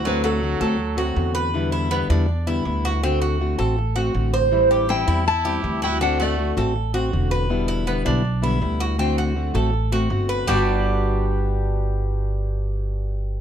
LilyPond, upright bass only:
\new Staff \with { instrumentName = "Upright bass" } { \clef bass \time 4/4 \key g \major \tempo 4 = 161 d,4. d,4. e,4~ | e,4. e,4. d,4~ | d,4. a,,4. a,,4~ | a,,4. e,4. d,4~ |
d,4. a,,4. e,,4~ | e,,4. b,,4. d,4~ | d,4. a,,4. g,,4 | g,,1~ |
g,,1 | }